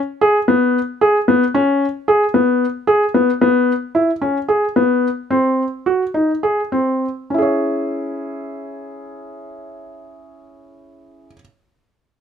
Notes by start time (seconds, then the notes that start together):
0.21 G#4
0.48 B3
1.01 G#4
1.28 B3
1.54 C#4
2.08 G#4
2.34 B3
2.87 G#4
3.14 B3
3.41 B3
3.95 E4
4.22 C#4
4.48 G#4
4.76 B3
5.30 C4
5.86 F#4
6.14 D#4
6.43 G#4
6.72 C4
7.30 C#4 E4
7.38 G#4 C#5